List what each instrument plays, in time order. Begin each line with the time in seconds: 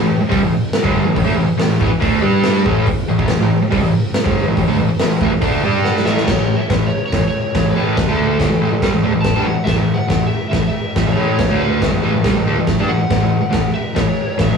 0.00 picked electric bass A1, distorted electric guitar A2 E3
0.21 muted distorted electric guitar stroke, muted picked electric bass stroke
0.29 picked electric bass C2, distorted electric guitar C3 G3, kick, open hi-hat
0.41 picked electric bass A1, distorted electric guitar A2 E3
0.73 snare, open hi-hat
0.83 picked electric bass G1, distorted electric guitar G2 D3 G3, kick
1.04 picked electric bass A1, distorted electric guitar A2 E3
1.15 picked electric bass A1, distorted electric guitar A2 E3, kick, open hi-hat
1.24 picked electric bass D2, distorted electric guitar D3 A3
1.35 picked electric bass A1, distorted electric guitar A2 E3
1.46 muted distorted electric guitar stroke, muted picked electric bass stroke
1.57 picked electric bass A1, distorted electric guitar A2 E3, snare, open hi-hat
1.79 picked electric bass A1, distorted electric guitar A2 E3, kick
1.89 muted distorted electric guitar stroke, muted picked electric bass stroke
2.00 picked electric bass D2, distorted electric guitar D3 A3 D4, kick, open hi-hat
2.21 picked electric bass G2, distorted electric guitar G3 D4 G4
2.44 snare, open hi-hat
2.66 picked electric bass A1, distorted electric guitar A2 E3 A3, kick
2.86 kick, open hi-hat
3.08 picked electric bass A1, distorted electric guitar A2 E3
3.19 picked electric bass A1, distorted electric guitar A2 E3, kick
3.28 picked electric bass A1, distorted electric guitar A2 E3, snare, open hi-hat
3.41 picked electric bass A1, distorted electric guitar A2 E3
3.62 muted distorted electric guitar stroke, muted picked electric bass stroke
3.71 picked electric bass C2, distorted electric guitar C3 G3, kick, open hi-hat
3.81 picked electric bass A1, distorted electric guitar A2 E3
4.14 snare, open hi-hat
4.24 picked electric bass G1, distorted electric guitar G2 D3 G3, kick
4.47 picked electric bass A1, distorted electric guitar A2 E3
4.57 picked electric bass A1, distorted electric guitar A2 E3, kick, open hi-hat
4.68 picked electric bass D2, distorted electric guitar D3 A3
4.78 picked electric bass A1, distorted electric guitar A2 E3
4.89 muted distorted electric guitar stroke, muted picked electric bass stroke
4.99 picked electric bass A1, distorted electric guitar A2 E3, snare, open hi-hat
5.21 picked electric bass A1, distorted electric guitar A2 E3, kick
5.31 muted picked electric bass stroke, muted distorted electric guitar stroke
5.41 picked electric bass D2, distorted electric guitar D3 A3 D4, kick, open hi-hat
5.62 picked electric bass G2, distorted electric guitar G3 D4 G4
5.84 electric slide guitar F#5, snare
5.97 snare
6.05 picked electric bass A1, distorted electric guitar A2 E3 A3, electric slide guitar E5, snare
6.17 snare
6.26 picked electric bass A1, distorted electric guitar A2 E3, electric slide guitar C#5, kick, snare, crash
6.38 picked electric bass A1, distorted electric guitar A2 E3
6.56 electric slide guitar E5, muted picked electric bass stroke, muted distorted electric guitar stroke
6.70 picked electric bass A1, distorted electric guitar A2 E3, kick, snare, open hi-hat
6.86 electric slide guitar C#5
7.06 electric slide guitar C#5
7.12 picked electric bass A1, distorted electric guitar A2 E3, kick, snare, open hi-hat
7.23 muted distorted electric guitar stroke, muted picked electric bass stroke
7.28 electric slide guitar C#5
7.55 picked electric bass A1, distorted electric guitar A2 E3, kick, snare, open hi-hat
7.65 picked electric bass A1, distorted electric guitar A2 E3
7.71 picked electric bass A1, electric slide guitar B4
7.76 distorted electric guitar A2 E3 A3
7.97 picked electric bass A1, distorted electric guitar A2 E3, kick, snare, open hi-hat
8.07 picked electric bass D2, distorted electric guitar D3 A3 D4
8.12 electric slide guitar A4
8.37 picked electric bass G1, distorted electric guitar G2 D3, kick, snare, open hi-hat
8.48 picked electric bass A1, distorted electric guitar A2 E3
8.61 picked electric bass A1, distorted electric guitar A2 E3
8.71 picked electric bass A1, distorted electric guitar A2 E3
8.82 picked electric bass C2, distorted electric guitar C3 G3, kick, snare, open hi-hat
8.94 picked electric bass A1, distorted electric guitar A2 E3
9.03 picked electric bass D2, distorted electric guitar D3 A3
9.13 picked electric bass A1, distorted electric guitar A2 E3
9.21 electric slide guitar A5, kick, snare, open hi-hat
9.35 picked electric bass G2, distorted electric guitar G3 D4
9.42 picked electric bass A1, electric slide guitar F#5
9.46 distorted electric guitar A2 E3
9.56 muted picked electric bass stroke, muted distorted electric guitar stroke
9.64 distorted electric guitar A2 E3, electric slide guitar E5, kick, snare, open hi-hat
9.68 picked electric bass A1
9.75 picked electric bass A1, distorted electric guitar A2 E3
9.94 electric slide guitar F#5, muted distorted electric guitar stroke
9.99 muted picked electric bass stroke
10.08 picked electric bass A1, distorted electric guitar A2 E3, kick, snare, open hi-hat
10.27 electric slide guitar E5
10.50 picked electric bass A1, distorted electric guitar A2 E3, electric slide guitar E5, kick, snare, open hi-hat
10.63 muted distorted electric guitar stroke, muted picked electric bass stroke
10.68 electric slide guitar E5
10.95 picked electric bass A1, distorted electric guitar A2 E3, kick, snare, open hi-hat
11.05 picked electric bass A1, distorted electric guitar A2 E3
11.12 electric slide guitar C#5
11.16 picked electric bass A1, distorted electric guitar A2 E3 A3
11.39 picked electric bass A1, distorted electric guitar A2 E3, kick, snare, open hi-hat
11.49 picked electric bass D2, distorted electric guitar D3 A3 D4
11.56 electric slide guitar B4
11.80 picked electric bass G1, distorted electric guitar G2 D3, kick, snare, open hi-hat
11.92 picked electric bass A1, distorted electric guitar A2 E3
12.02 distorted electric guitar A2 E3
12.06 picked electric bass A1
12.15 picked electric bass A1, distorted electric guitar A2 E3
12.23 picked electric bass C2, distorted electric guitar C3 G3, kick, snare, open hi-hat
12.35 picked electric bass A1, distorted electric guitar A2 E3
12.46 picked electric bass D2, distorted electric guitar D3 A3
12.57 picked electric bass A1, distorted electric guitar A2 E3
12.67 kick, snare, open hi-hat
12.79 picked electric bass G2, distorted electric guitar G3 D4
12.88 picked electric bass A1, distorted electric guitar A2 E3, electric slide guitar F#5
13.00 muted picked electric bass stroke, muted distorted electric guitar stroke
13.10 picked electric bass A1, distorted electric guitar A2 E3, kick, snare, open hi-hat
13.20 picked electric bass A1, distorted electric guitar A2 E3
13.41 muted distorted electric guitar stroke, muted picked electric bass stroke
13.50 picked electric bass A1, distorted electric guitar A2 E3, kick, snare, open hi-hat
13.74 electric slide guitar E5
13.95 picked electric bass A1, distorted electric guitar A2 E3, electric slide guitar C#5, kick, snare, open hi-hat
14.07 muted picked electric bass stroke, muted distorted electric guitar stroke
14.38 picked electric bass A1, distorted electric guitar A2 E3, electric slide guitar E5, kick, snare, open hi-hat
14.49 picked electric bass A1, distorted electric guitar A2 E3